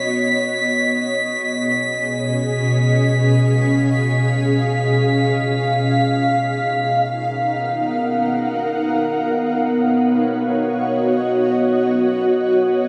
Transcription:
0, 0, Header, 1, 4, 480
1, 0, Start_track
1, 0, Tempo, 500000
1, 12369, End_track
2, 0, Start_track
2, 0, Title_t, "Synth texture"
2, 0, Program_c, 0, 99
2, 0, Note_on_c, 0, 95, 82
2, 6154, Note_off_c, 0, 95, 0
2, 12369, End_track
3, 0, Start_track
3, 0, Title_t, "Ambient pad"
3, 0, Program_c, 1, 92
3, 0, Note_on_c, 1, 59, 74
3, 0, Note_on_c, 1, 66, 70
3, 0, Note_on_c, 1, 73, 84
3, 0, Note_on_c, 1, 75, 75
3, 896, Note_off_c, 1, 66, 0
3, 917, Note_on_c, 1, 47, 83
3, 1160, Note_on_c, 1, 68, 80
3, 1378, Note_on_c, 1, 61, 76
3, 1961, Note_off_c, 1, 59, 0
3, 2567, Note_off_c, 1, 73, 0
3, 3242, Note_on_c, 1, 77, 94
3, 6146, Note_off_c, 1, 47, 0
3, 6165, Note_on_c, 1, 63, 86
3, 6574, Note_on_c, 1, 70, 82
3, 6831, Note_on_c, 1, 78, 71
3, 7190, Note_off_c, 1, 68, 0
3, 7190, Note_off_c, 1, 75, 0
3, 7195, Note_off_c, 1, 61, 0
3, 8759, Note_on_c, 1, 59, 76
3, 8969, Note_on_c, 1, 73, 76
3, 9260, Note_on_c, 1, 66, 84
3, 9809, Note_on_c, 1, 75, 71
3, 9811, Note_off_c, 1, 70, 0
3, 9811, Note_off_c, 1, 77, 0
3, 9811, Note_off_c, 1, 78, 0
3, 9817, Note_off_c, 1, 63, 0
3, 11375, Note_off_c, 1, 59, 0
3, 12369, Note_off_c, 1, 66, 0
3, 12369, Note_off_c, 1, 73, 0
3, 12369, Note_off_c, 1, 75, 0
3, 12369, End_track
4, 0, Start_track
4, 0, Title_t, "Synth drone"
4, 0, Program_c, 2, 95
4, 6157, Note_on_c, 2, 59, 72
4, 12369, Note_off_c, 2, 59, 0
4, 12369, End_track
0, 0, End_of_file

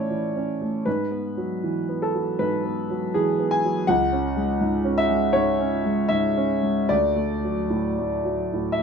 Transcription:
0, 0, Header, 1, 2, 480
1, 0, Start_track
1, 0, Tempo, 761421
1, 542, Time_signature, 4, 2, 24, 8
1, 1504, Tempo, 745342
1, 3904, Tempo, 800000
1, 5533, End_track
2, 0, Start_track
2, 0, Title_t, "Grand piano"
2, 0, Program_c, 0, 0
2, 0, Control_c, 0, 64, 127
2, 0, Note_on_c, 0, 52, 30
2, 0, Note_on_c, 0, 57, 31
2, 0, Note_on_c, 0, 61, 32
2, 0, Note_on_c, 0, 73, 57
2, 0, Note_on_c, 0, 74, 61
2, 68, Note_off_c, 0, 52, 0
2, 68, Note_on_c, 0, 52, 32
2, 160, Note_off_c, 0, 57, 0
2, 225, Note_off_c, 0, 61, 0
2, 225, Note_on_c, 0, 61, 32
2, 321, Note_off_c, 0, 52, 0
2, 386, Note_on_c, 0, 57, 32
2, 479, Note_off_c, 0, 61, 0
2, 536, Note_off_c, 0, 73, 0
2, 539, Note_on_c, 0, 71, 62
2, 544, Note_off_c, 0, 57, 0
2, 545, Note_on_c, 0, 44, 43
2, 553, Control_c, 0, 64, 0
2, 560, Note_off_c, 0, 74, 0
2, 643, Control_c, 0, 64, 127
2, 701, Note_on_c, 0, 59, 33
2, 865, Note_on_c, 0, 54, 35
2, 960, Note_off_c, 0, 59, 0
2, 1031, Note_on_c, 0, 52, 33
2, 1123, Note_off_c, 0, 54, 0
2, 1191, Note_on_c, 0, 59, 33
2, 1265, Note_off_c, 0, 71, 0
2, 1275, Note_on_c, 0, 69, 62
2, 1286, Note_off_c, 0, 52, 0
2, 1350, Note_on_c, 0, 54, 34
2, 1444, Note_off_c, 0, 59, 0
2, 1481, Note_off_c, 0, 44, 0
2, 1507, Note_on_c, 0, 71, 68
2, 1508, Note_on_c, 0, 44, 40
2, 1509, Note_off_c, 0, 69, 0
2, 1603, Note_off_c, 0, 54, 0
2, 1672, Note_on_c, 0, 59, 41
2, 1837, Note_on_c, 0, 54, 38
2, 1923, Note_off_c, 0, 59, 0
2, 1984, Note_off_c, 0, 71, 0
2, 1991, Note_on_c, 0, 68, 68
2, 1993, Note_on_c, 0, 52, 40
2, 2085, Note_off_c, 0, 54, 0
2, 2151, Note_on_c, 0, 59, 39
2, 2226, Note_off_c, 0, 68, 0
2, 2228, Note_on_c, 0, 80, 76
2, 2242, Note_off_c, 0, 52, 0
2, 2317, Note_on_c, 0, 54, 39
2, 2400, Note_off_c, 0, 59, 0
2, 2434, Note_off_c, 0, 44, 0
2, 2461, Note_off_c, 0, 80, 0
2, 2462, Note_on_c, 0, 78, 83
2, 2466, Note_off_c, 0, 54, 0
2, 2469, Control_c, 0, 64, 0
2, 2470, Note_on_c, 0, 37, 49
2, 2580, Control_c, 0, 64, 127
2, 2621, Note_on_c, 0, 61, 38
2, 2779, Note_on_c, 0, 56, 42
2, 2874, Note_off_c, 0, 61, 0
2, 2937, Note_on_c, 0, 44, 38
2, 3033, Note_off_c, 0, 56, 0
2, 3086, Note_on_c, 0, 61, 41
2, 3172, Note_on_c, 0, 76, 80
2, 3176, Note_off_c, 0, 78, 0
2, 3190, Note_off_c, 0, 44, 0
2, 3247, Note_on_c, 0, 56, 42
2, 3344, Note_off_c, 0, 61, 0
2, 3392, Note_off_c, 0, 37, 0
2, 3399, Note_on_c, 0, 73, 76
2, 3406, Note_on_c, 0, 44, 38
2, 3412, Note_off_c, 0, 76, 0
2, 3506, Note_off_c, 0, 56, 0
2, 3574, Note_on_c, 0, 61, 42
2, 3669, Note_off_c, 0, 44, 0
2, 3736, Note_on_c, 0, 56, 39
2, 3838, Note_off_c, 0, 61, 0
2, 3886, Note_on_c, 0, 76, 75
2, 3898, Note_off_c, 0, 73, 0
2, 3899, Note_on_c, 0, 44, 41
2, 3996, Note_off_c, 0, 56, 0
2, 4056, Note_on_c, 0, 61, 38
2, 4150, Note_off_c, 0, 44, 0
2, 4207, Note_on_c, 0, 56, 38
2, 4309, Note_off_c, 0, 61, 0
2, 4366, Note_off_c, 0, 76, 0
2, 4370, Note_off_c, 0, 56, 0
2, 4371, Note_on_c, 0, 74, 77
2, 4376, Note_on_c, 0, 38, 46
2, 4385, Control_c, 0, 64, 0
2, 4492, Control_c, 0, 64, 127
2, 4531, Note_on_c, 0, 57, 37
2, 4701, Note_on_c, 0, 54, 35
2, 4792, Note_off_c, 0, 57, 0
2, 4856, Note_on_c, 0, 45, 35
2, 4959, Note_off_c, 0, 54, 0
2, 5027, Note_on_c, 0, 57, 35
2, 5117, Note_off_c, 0, 45, 0
2, 5185, Note_on_c, 0, 54, 35
2, 5283, Note_off_c, 0, 57, 0
2, 5321, Note_off_c, 0, 38, 0
2, 5356, Note_on_c, 0, 45, 33
2, 5442, Note_off_c, 0, 54, 0
2, 5463, Note_off_c, 0, 74, 0
2, 5470, Note_on_c, 0, 76, 66
2, 5510, Note_on_c, 0, 57, 35
2, 5533, Note_off_c, 0, 45, 0
2, 5533, Note_off_c, 0, 57, 0
2, 5533, Note_off_c, 0, 76, 0
2, 5533, End_track
0, 0, End_of_file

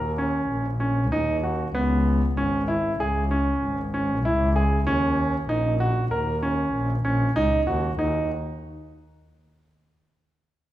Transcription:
0, 0, Header, 1, 3, 480
1, 0, Start_track
1, 0, Tempo, 624350
1, 1340, Time_signature, 5, 2, 24, 8
1, 8246, End_track
2, 0, Start_track
2, 0, Title_t, "Grand piano"
2, 0, Program_c, 0, 0
2, 0, Note_on_c, 0, 70, 67
2, 78, Note_off_c, 0, 70, 0
2, 140, Note_on_c, 0, 61, 68
2, 496, Note_off_c, 0, 61, 0
2, 615, Note_on_c, 0, 61, 66
2, 795, Note_off_c, 0, 61, 0
2, 861, Note_on_c, 0, 63, 85
2, 1039, Note_off_c, 0, 63, 0
2, 1103, Note_on_c, 0, 66, 64
2, 1280, Note_off_c, 0, 66, 0
2, 1342, Note_on_c, 0, 59, 77
2, 1698, Note_off_c, 0, 59, 0
2, 1824, Note_on_c, 0, 61, 72
2, 2001, Note_off_c, 0, 61, 0
2, 2060, Note_on_c, 0, 64, 72
2, 2238, Note_off_c, 0, 64, 0
2, 2307, Note_on_c, 0, 68, 78
2, 2483, Note_off_c, 0, 68, 0
2, 2544, Note_on_c, 0, 61, 72
2, 2899, Note_off_c, 0, 61, 0
2, 3027, Note_on_c, 0, 61, 65
2, 3203, Note_off_c, 0, 61, 0
2, 3268, Note_on_c, 0, 64, 85
2, 3444, Note_off_c, 0, 64, 0
2, 3503, Note_on_c, 0, 68, 73
2, 3681, Note_off_c, 0, 68, 0
2, 3741, Note_on_c, 0, 61, 86
2, 4098, Note_off_c, 0, 61, 0
2, 4220, Note_on_c, 0, 63, 76
2, 4399, Note_off_c, 0, 63, 0
2, 4460, Note_on_c, 0, 66, 76
2, 4639, Note_off_c, 0, 66, 0
2, 4698, Note_on_c, 0, 70, 72
2, 4878, Note_off_c, 0, 70, 0
2, 4940, Note_on_c, 0, 61, 73
2, 5297, Note_off_c, 0, 61, 0
2, 5417, Note_on_c, 0, 61, 72
2, 5597, Note_off_c, 0, 61, 0
2, 5657, Note_on_c, 0, 63, 92
2, 5837, Note_off_c, 0, 63, 0
2, 5896, Note_on_c, 0, 66, 73
2, 6077, Note_off_c, 0, 66, 0
2, 6140, Note_on_c, 0, 63, 73
2, 6364, Note_off_c, 0, 63, 0
2, 8246, End_track
3, 0, Start_track
3, 0, Title_t, "Double bass"
3, 0, Program_c, 1, 43
3, 0, Note_on_c, 1, 39, 87
3, 348, Note_off_c, 1, 39, 0
3, 383, Note_on_c, 1, 34, 85
3, 862, Note_on_c, 1, 39, 91
3, 874, Note_off_c, 1, 34, 0
3, 1311, Note_off_c, 1, 39, 0
3, 1344, Note_on_c, 1, 37, 102
3, 1792, Note_off_c, 1, 37, 0
3, 1828, Note_on_c, 1, 32, 91
3, 2275, Note_off_c, 1, 32, 0
3, 2303, Note_on_c, 1, 37, 89
3, 2752, Note_off_c, 1, 37, 0
3, 2786, Note_on_c, 1, 32, 90
3, 3263, Note_on_c, 1, 37, 110
3, 3275, Note_off_c, 1, 32, 0
3, 3713, Note_off_c, 1, 37, 0
3, 3745, Note_on_c, 1, 39, 95
3, 4193, Note_off_c, 1, 39, 0
3, 4229, Note_on_c, 1, 34, 92
3, 4676, Note_off_c, 1, 34, 0
3, 4703, Note_on_c, 1, 39, 89
3, 5153, Note_off_c, 1, 39, 0
3, 5183, Note_on_c, 1, 34, 93
3, 5419, Note_off_c, 1, 34, 0
3, 5423, Note_on_c, 1, 34, 90
3, 5639, Note_off_c, 1, 34, 0
3, 5665, Note_on_c, 1, 37, 87
3, 5880, Note_off_c, 1, 37, 0
3, 5904, Note_on_c, 1, 39, 94
3, 6120, Note_off_c, 1, 39, 0
3, 6144, Note_on_c, 1, 39, 84
3, 6367, Note_off_c, 1, 39, 0
3, 8246, End_track
0, 0, End_of_file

